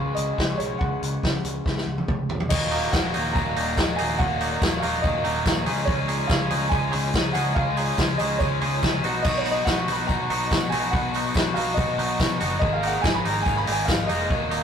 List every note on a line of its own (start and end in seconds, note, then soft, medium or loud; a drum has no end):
0.00 2.50 C#3 medium
0.00 2.50 G#3 medium
0.00 2.51 C#4 medium
0.00 2.51 F#4 medium
0.00 2.52 G#4 medium
0.00 0.17 F5 loud
0.15 0.31 C#2 medium
0.15 0.60 D#5 medium
0.15 closed hi-hat medium
0.38 0.52 C#2 medium
0.38 kick loud
0.38 snare loud
0.57 0.73 B1 medium
0.57 0.78 C#5 medium
0.57 closed hi-hat medium
0.78 0.95 C#2 loud
0.78 2.03 F#5 medium
0.78 kick loud
1.02 1.16 C#2 medium
1.02 closed hi-hat medium
1.23 1.37 C#2 medium
1.23 kick loud
1.23 snare loud
1.45 1.59 C#2 medium
1.45 closed hi-hat medium
1.66 1.80 C#2 loud
1.66 kick loud
1.66 snare medium
1.78 snare medium
1.86 2.00 C#2 medium
1.98 high tom medium
2.08 2.22 C#2 medium
2.08 kick loud
2.08 mid tom medium
2.29 2.43 B1 medium
2.29 floor tom medium
2.40 floor tom medium
2.49 2.85 D#1 loud
2.49 3.34 D#2 medium
2.49 3.14 A#2 loud
2.49 2.92 D#3 loud
2.49 2.93 F#3 loud
2.49 2.93 A#3 loud
2.49 2.94 D#4 loud
2.49 5.63 F#4 medium
2.49 5.63 A#4 medium
2.49 2.93 D#5 medium
2.49 5.64 D#5 medium
2.49 5.63 A#5 medium
2.49 kick loud
2.49 crash loud
2.71 3.00 D#3 medium
2.71 2.99 F#3 medium
2.71 2.99 A#3 loud
2.71 2.99 D#4 medium
2.71 open hi-hat medium
2.71 tambourine medium
2.91 3.10 D#1 loud
2.91 3.15 D#3 medium
2.91 3.14 F#3 medium
2.91 3.13 A#3 medium
2.91 3.13 D#4 medium
2.91 3.31 F#5 medium
2.91 kick loud
2.91 snare loud
2.91 tambourine loud
3.14 3.32 D#1 medium
3.14 3.34 D#3 medium
3.14 3.35 F#3 medium
3.14 3.35 A#3 medium
3.14 3.36 D#4 medium
3.14 open hi-hat loud
3.14 tambourine medium
3.33 3.52 D#1 loud
3.33 3.77 D#2 loud
3.33 3.77 A#2 loud
3.33 3.56 D#3 loud
3.33 3.56 F#3 loud
3.33 3.55 A#3 loud
3.33 3.56 D#4 loud
3.33 3.73 A#5 loud
3.33 kick loud
3.33 tambourine medium
3.56 3.73 D#1 loud
3.56 3.99 D#3 medium
3.56 3.98 F#3 medium
3.56 3.98 A#3 medium
3.56 3.98 D#4 medium
3.56 open hi-hat loud
3.56 tambourine soft
3.77 3.94 D#1 medium
3.77 kick loud
3.77 snare loud
3.77 tambourine medium
3.96 4.16 D#1 medium
3.96 4.18 D#3 medium
3.96 4.19 F#3 medium
3.96 4.20 A#3 medium
3.96 4.20 D#4 medium
3.96 4.17 G#5 medium
3.96 open hi-hat loud
3.96 tambourine medium
4.18 4.54 D#1 loud
4.18 4.82 D#2 loud
4.18 4.82 A#2 loud
4.18 4.60 D#3 loud
4.18 4.61 F#3 loud
4.18 4.61 A#3 loud
4.18 4.63 D#4 loud
4.18 4.58 F#5 loud
4.18 kick loud
4.18 tambourine soft
4.41 4.69 D#3 medium
4.41 4.68 F#3 medium
4.41 4.68 A#3 medium
4.41 4.68 D#4 loud
4.41 open hi-hat medium
4.41 tambourine medium
4.61 4.79 D#1 loud
4.61 4.84 D#3 medium
4.61 4.83 F#3 medium
4.61 4.82 A#3 medium
4.61 4.82 D#4 medium
4.61 kick loud
4.61 snare loud
4.61 tambourine loud
4.80 5.00 D#1 medium
4.80 5.04 A#3 medium
4.80 5.05 D#4 medium
4.80 5.03 F5 medium
4.80 open hi-hat loud
4.80 tambourine medium
4.84 5.03 D#3 medium
4.84 5.04 F#3 medium
5.02 5.21 D#1 loud
5.02 5.45 D#2 loud
5.02 5.46 A#2 loud
5.02 5.25 D#3 loud
5.02 5.25 F#3 loud
5.02 5.24 A#3 loud
5.02 5.24 D#4 loud
5.02 5.62 D#5 loud
5.02 kick loud
5.02 tambourine medium
5.24 5.41 D#1 loud
5.24 5.66 D#3 medium
5.24 5.66 F#3 medium
5.24 5.66 A#3 medium
5.24 5.66 D#4 medium
5.24 open hi-hat medium
5.24 tambourine soft
5.45 5.67 D#1 loud
5.45 kick loud
5.45 snare loud
5.45 tambourine loud
5.66 5.83 C#2 loud
5.66 5.87 C#3 medium
5.66 5.87 G#3 medium
5.66 5.87 C#4 medium
5.66 5.88 D#4 medium
5.66 9.00 F4 medium
5.66 5.89 G#4 medium
5.66 9.00 C#5 medium
5.66 12.58 D#5 medium
5.66 9.00 G#5 medium
5.66 open hi-hat medium
5.66 tambourine medium
5.85 6.22 C#2 loud
5.85 6.55 C#3 loud
5.85 6.29 G#3 medium
5.85 6.29 C#4 loud
5.85 6.30 D#4 loud
5.85 6.30 C#5 loud
5.85 kick loud
5.85 tambourine soft
5.89 6.31 G#4 loud
6.08 6.36 G#3 medium
6.08 6.36 C#4 loud
6.08 6.36 D#4 loud
6.08 6.36 G#4 loud
6.08 open hi-hat medium
6.08 tambourine medium
6.27 6.47 C#2 loud
6.27 6.70 G#3 medium
6.27 6.52 C#4 medium
6.27 6.51 D#4 medium
6.27 6.49 G#4 medium
6.27 6.72 F5 medium
6.27 kick loud
6.27 snare loud
6.27 tambourine loud
6.50 6.68 C#2 medium
6.50 6.79 G#3 medium
6.50 6.71 C#4 medium
6.50 6.72 D#4 medium
6.50 6.72 G#4 medium
6.50 open hi-hat loud
6.50 tambourine medium
6.69 6.89 C#2 loud
6.69 7.14 C#3 loud
6.69 7.14 G#3 loud
6.69 6.93 C#4 loud
6.69 6.93 D#4 loud
6.69 6.91 G#4 loud
6.69 7.10 G#5 loud
6.69 kick loud
6.69 tambourine medium
6.92 7.10 C#2 loud
6.92 7.20 G#3 medium
6.92 7.35 C#4 medium
6.92 7.35 D#4 medium
6.92 7.33 G#4 medium
6.92 open hi-hat loud
6.92 tambourine soft
7.14 7.31 C#2 medium
7.14 kick loud
7.14 snare loud
7.14 tambourine loud
7.33 7.52 C#2 loud
7.33 7.63 G#3 medium
7.33 7.55 C#4 medium
7.33 7.56 D#4 medium
7.33 7.56 G#4 medium
7.33 7.53 F#5 loud
7.33 open hi-hat medium
7.33 tambourine medium
7.55 7.91 C#2 loud
7.55 8.19 C#3 medium
7.55 7.96 G#3 loud
7.55 7.97 C#4 loud
7.55 7.98 D#4 loud
7.55 7.98 G#4 loud
7.55 7.94 F5 loud
7.55 kick loud
7.55 tambourine soft
7.77 8.05 G#3 medium
7.77 8.05 C#4 medium
7.77 8.05 D#4 loud
7.77 8.04 G#4 loud
7.77 open hi-hat medium
7.77 tambourine medium
7.98 8.16 C#2 loud
7.98 8.39 G#3 medium
7.98 8.19 C#4 medium
7.98 8.19 D#4 medium
7.98 8.17 G#4 medium
7.98 kick loud
7.98 snare loud
7.98 tambourine loud
8.18 8.37 C#2 medium
8.18 8.47 G#3 medium
8.18 8.40 C#4 medium
8.18 8.41 D#4 medium
8.18 8.40 G#4 medium
8.18 8.38 D#5 medium
8.18 open hi-hat medium
8.18 tambourine medium
8.39 8.58 C#2 loud
8.39 8.82 C#3 loud
8.39 8.82 G#3 loud
8.39 8.62 C#4 loud
8.39 8.62 D#4 loud
8.39 8.60 G#4 loud
8.39 8.99 C#5 medium
8.39 kick loud
8.39 tambourine medium
8.61 8.79 C#2 medium
8.61 8.89 G#3 medium
8.61 9.03 C#4 medium
8.61 9.04 D#4 medium
8.61 9.02 G#4 medium
8.61 open hi-hat medium
8.61 tambourine soft
8.83 9.00 C#2 loud
8.83 kick loud
8.83 snare loud
8.83 tambourine loud
9.03 9.20 B1 loud
9.03 9.24 B2 medium
9.03 9.24 F#3 medium
9.03 9.25 B3 medium
9.03 9.25 D#4 medium
9.03 9.26 F#4 medium
9.03 12.58 F#4 medium
9.03 12.58 B4 medium
9.03 10.70 F#5 medium
9.03 open hi-hat medium
9.03 tambourine medium
9.22 9.59 B1 loud
9.22 10.09 B2 loud
9.22 9.66 F#3 loud
9.22 9.67 B3 loud
9.22 9.67 D#4 loud
9.22 9.68 F#4 loud
9.22 9.36 D#5 loud
9.22 kick loud
9.22 tambourine soft
9.22 crash loud
9.37 9.52 C#5 medium
9.45 9.73 F#3 medium
9.45 9.73 B3 loud
9.45 9.73 D#4 loud
9.45 9.73 F#4 loud
9.45 open hi-hat medium
9.45 tambourine medium
9.51 9.66 D#5 medium
9.65 9.84 B1 loud
9.65 10.09 F#3 medium
9.65 9.89 B3 medium
9.65 9.88 D#4 medium
9.65 9.87 F#4 medium
9.65 9.80 F#5 loud
9.65 kick loud
9.65 snare loud
9.65 tambourine loud
9.78 9.94 C#6 loud
9.87 10.05 B1 medium
9.87 10.16 F#3 medium
9.87 10.10 B3 medium
9.87 10.10 D#4 medium
9.87 10.10 F#4 medium
9.87 open hi-hat loud
9.87 tambourine medium
9.92 10.08 B5 loud
10.07 10.26 B1 loud
10.07 10.51 B2 medium
10.07 10.51 F#3 loud
10.07 10.32 B3 loud
10.07 10.31 D#4 loud
10.07 10.47 A#5 loud
10.07 kick loud
10.07 tambourine medium
10.11 10.29 F#4 loud
10.30 10.47 B1 medium
10.30 10.58 F#3 medium
10.30 10.73 B3 medium
10.30 10.72 D#4 medium
10.30 10.70 F#4 medium
10.30 open hi-hat loud
10.30 tambourine soft
10.51 10.68 B1 loud
10.51 kick loud
10.51 snare loud
10.51 tambourine loud
10.70 10.89 B1 loud
10.70 10.93 B3 medium
10.70 10.93 D#4 medium
10.70 10.93 F#4 medium
10.70 10.90 G#5 loud
10.70 12.59 C#6 medium
10.70 open hi-hat loud
10.70 tambourine medium
10.74 11.00 F#3 medium
10.91 11.27 B1 loud
10.91 11.56 B2 loud
10.91 11.34 F#3 loud
10.91 11.35 B3 loud
10.91 11.36 D#4 loud
10.91 11.36 F#4 loud
10.91 11.31 F#5 loud
10.91 kick loud
10.91 tambourine soft
11.14 11.43 F#3 medium
11.14 11.42 B3 loud
11.14 11.42 D#4 loud
11.14 11.42 F#4 loud
11.14 open hi-hat medium
11.14 tambourine medium
11.34 11.52 B1 loud
11.34 11.75 F#3 medium
11.34 11.57 B3 medium
11.34 11.56 D#4 medium
11.34 11.54 F#4 medium
11.34 kick loud
11.34 snare loud
11.34 tambourine medium
11.54 11.73 B1 medium
11.54 11.84 F#3 medium
11.54 11.76 B3 medium
11.54 11.77 D#4 medium
11.54 11.77 F#4 medium
11.54 11.77 F5 loud
11.54 open hi-hat loud
11.54 tambourine medium
11.74 11.95 B1 loud
11.74 12.19 B2 medium
11.74 12.19 F#3 loud
11.74 11.98 B3 loud
11.74 11.98 D#4 loud
11.74 12.35 D#5 loud
11.74 kick loud
11.74 tambourine medium
11.78 11.96 F#4 loud
11.97 12.15 B1 loud
11.97 12.26 F#3 medium
11.97 12.41 B3 medium
11.97 12.40 D#4 medium
11.97 12.39 F#4 medium
11.97 open hi-hat loud
11.97 tambourine soft
12.20 12.37 B1 loud
12.20 kick loud
12.20 snare loud
12.20 tambourine loud
12.40 12.58 F#1 loud
12.40 12.62 F#3 medium
12.40 12.61 B3 medium
12.40 12.61 D#4 medium
12.40 12.60 F#4 medium
12.40 open hi-hat medium
12.40 tambourine medium
12.59 12.96 G#1 loud
12.59 13.24 G#2 loud
12.59 13.01 D#3 loud
12.59 13.02 G#3 loud
12.59 13.04 A#3 loud
12.59 13.04 D#4 loud
12.59 14.28 G#4 medium
12.59 14.28 A#4 medium
12.59 12.73 D#5 loud
12.59 14.63 D#5 medium
12.59 14.63 A#5 medium
12.59 kick loud
12.59 tambourine soft
12.73 12.89 F5 loud
12.83 13.11 D#3 medium
12.83 13.10 G#3 medium
12.83 13.10 A#3 loud
12.83 13.10 D#4 loud
12.83 13.01 F#5 loud
12.83 open hi-hat medium
12.83 tambourine medium
13.02 13.21 G#1 loud
13.02 13.45 D#3 medium
13.02 13.24 G#3 medium
13.02 13.25 A#3 medium
13.02 13.23 D#4 medium
13.02 13.15 G#5 loud
13.02 kick loud
13.02 snare loud
13.02 tambourine loud
13.14 13.30 B5 loud
13.24 13.42 G#1 medium
13.24 13.53 D#3 medium
13.24 13.45 G#3 medium
13.24 13.46 A#3 medium
13.24 13.47 D#4 medium
13.24 open hi-hat medium
13.24 tambourine medium
13.30 13.45 A#5 loud
13.42 13.63 G#1 loud
13.42 13.87 G#2 loud
13.42 13.88 D#3 loud
13.42 13.58 G#5 loud
13.42 tambourine medium
13.46 13.68 G#3 loud
13.46 13.67 A#3 loud
13.46 13.66 D#4 loud
13.46 kick loud
13.57 13.73 B5 loud
13.66 13.84 G#1 loud
13.66 13.95 D#3 medium
13.66 14.09 G#3 medium
13.66 14.09 A#3 medium
13.66 14.08 D#4 medium
13.66 open hi-hat loud
13.72 13.86 G#5 loud
13.85 14.05 G#1 loud
13.85 14.08 F5 medium
13.85 kick loud
13.85 snare loud
13.85 tambourine loud
14.07 14.30 F1 loud
14.07 14.30 D#3 medium
14.07 14.29 G#3 medium
14.07 14.30 A#3 medium
14.07 14.31 D#4 medium
14.07 14.63 D#5 loud
14.07 open hi-hat medium
14.07 tambourine medium
14.29 14.63 D#1 loud
14.29 14.63 D#2 loud
14.29 14.63 A#2 loud
14.29 14.63 D#3 loud
14.29 14.63 F#3 loud
14.29 14.63 A#3 loud
14.29 14.63 D#4 loud
14.29 14.63 F#4 medium
14.29 14.63 A#4 medium
14.29 kick loud
14.29 tambourine soft
14.51 14.63 D#3 medium
14.51 14.63 F#3 medium
14.51 14.63 A#3 loud
14.51 14.63 D#4 loud
14.51 open hi-hat medium
14.51 tambourine medium